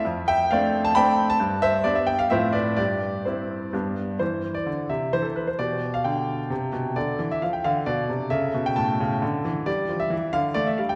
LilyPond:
<<
  \new Staff \with { instrumentName = "Grand piano" } { \time 3/4 \key c \major \tempo 4 = 132 << { r8 <e'' g''>8 <d'' f''>8. a''16 <g'' b''>8. a''16 | r8 <c'' e''>8 d''16 e''16 g''16 f''16 <c'' e''>8 <b' d''>8 | <g' d''>4 <g' c''>4 r4 | c''8. d''8. e''8 c''16 a'16 b'16 c''16 |
d''8. f''16 g''4. r8 | d''8. e''16 f''16 g''16 f''8 d''4 | e''8. g''16 a''4. r8 | d''8. e''8. f''8 d''16 e''16 f''16 g''16 | } \\ { r2. | r2. | r2. | e'2. |
g'2 r4 | a'2. | a'2 r4 | g'2. | } >> }
  \new Staff \with { instrumentName = "Grand piano" } { \clef bass \time 3/4 \key c \major f,4 <a c' d'>4 <a c' d'>4 | g,4 <g b d'>4 <a, f c' f'>4 | g,4 <g c' e'>4 <g, g b d'>4 | e4 d8 c8 e4 |
b,4 d4 c8 b,8 | d8 e8 f8 d8 b,8 c8 | cis8 b,8 a,8 cis8 d8 e8 | g8 f8 e8 d8 a8 g8 | }
>>